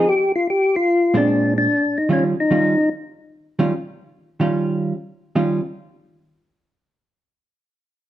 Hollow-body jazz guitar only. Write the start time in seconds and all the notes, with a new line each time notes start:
1.14 A#2 G#3 C4 D4
2.09 D#3 G3 C#4 F4
2.51 D#3 G3 C#4 F4
3.59 D#3 G3 C#4 F4
4.40 D#3 G3 C#4 F4
5.36 D#3 G3 C#4 F4